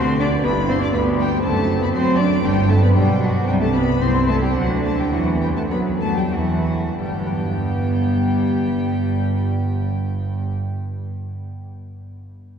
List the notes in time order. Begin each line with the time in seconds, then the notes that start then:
Already playing: D2 D3 C4 D4 F#4 C6
0.19 D4 D5 D6
0.39 B3 D4 G4
0.43 G1 G2 B3 E4 B4 B5
0.69 C4 C5 C6
0.81 D4 D5 D6
0.93 D2 B3 D4 B4 B5
1.18 G3 G4 G5
1.38 C4 D4
1.42 F#1 F#2 A3 C4 A4 A5
1.80 B3 B4 B5
1.93 F#2 F#3 C4 C5 C6
2.17 D4 D5 D6
2.40 B3 D4 G4 G5
2.44 G1 G2 G3 B3
2.68 A3 A4 A5
2.81 B3 B4 B5
2.95 B1 B2 G3 D4 G4 G5
3.21 F#3 F#4 F#5
3.43 A3 C4 E4 G4
3.47 C2 C3 G3 G5
3.60 A3 A4 A5
3.73 B3 B4 B5
4.00 C2 C4 E4 C5 C6
4.27 A3 A4 A5
4.42 G3 G4 G5
4.51 A3 C4 D4
4.55 D2 D3 F#3 D4 F#4 F#5
4.84 A3 A4 A5
4.98 G3 G4 G5
5.11 E2 E3 F#3 B3 F#4 F#5
5.41 G3 G4 G5
5.56 A3 A4 A5
5.70 F#2 F#3 B3 B4 B5
6.01 A3 A4 A5
6.16 G3 G4 G5
6.32 E2 E3 F#3 A3 F#4 F#5
6.99 G1 G2 G3 B3 G4 G5
7.06 G3
7.13 B3
7.20 D4
7.26 B4